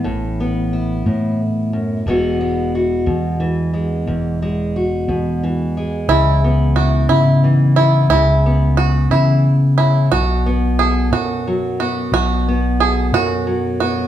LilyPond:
<<
  \new Staff \with { instrumentName = "Five-string banjo" } { \time 6/8 \key e \major \tempo 4. = 60 r2. | r2. | r2. | e'4 fis'8 e'4 e'8 |
e'4 fis'8 e'4 e'8 | fis'4 gis'8 fis'4 fis'8 | fis'4 gis'8 fis'4 fis'8 | }
  \new Staff \with { instrumentName = "Steel-string acoustic guitar" } { \clef bass \time 6/8 \key e \major << { e'8 b8 e'2 | <e gis b fis'>8 gis8 fis'4. gis8 | r8 gis8 fis'4. gis8 | r8 b8 e'4. b8 |
r8 b2~ b8 | r8 b8 a'4. b8 | r8 b8 a'4. b8 | } \\ { a,4. a,8 r8 fis,8 | e,4. b,8 e4 | e,4. b,8 e4 | cis4. gis,8 e4 |
cis4. e8 r8 cis8 | b,4. fis,8 fis4 | b,4. fis,8 fis4 | } >> }
  \new Staff \with { instrumentName = "Fingered electric bass" } { \clef bass \time 6/8 \key e \major a,,4. a,4. | e,,4. e,4. | e,,4. e,4. | cis,4. cis4. |
cis,4. cis4. | b,,4. b,4. | b,,4. b,4. | }
>>